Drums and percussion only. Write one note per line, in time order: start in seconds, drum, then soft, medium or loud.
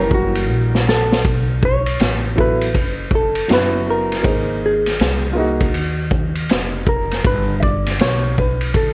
0.11 kick medium
0.36 ride medium
0.75 snare medium
0.89 snare medium
1.12 snare loud
1.25 kick loud
1.25 ride medium
1.63 kick medium
1.86 ride medium
2.00 snare loud
2.00 hi-hat pedal medium
2.00 ride medium
2.38 kick medium
2.61 ride medium
2.74 kick medium
2.74 ride medium
3.11 kick medium
3.35 ride medium
3.49 snare loud
3.49 hi-hat pedal soft
3.49 ride medium
4.12 snare soft
4.12 ride medium
4.24 kick loud
4.24 ride medium
4.86 snare soft
4.86 ride medium
4.99 snare loud
4.99 hi-hat pedal medium
4.99 ride medium
5.61 kick medium
5.61 ride medium
5.74 ride medium
6.11 kick medium
6.35 ride medium
6.49 snare loud
6.49 hi-hat pedal medium
6.49 ride medium
6.87 kick loud
7.11 snare soft
7.11 ride medium
7.24 kick loud
7.24 ride medium
7.63 kick medium
7.86 snare soft
7.86 ride medium
7.99 snare loud
7.99 hi-hat pedal medium
7.99 ride medium
8.38 kick medium
8.61 ride medium
8.74 kick loud
8.74 ride medium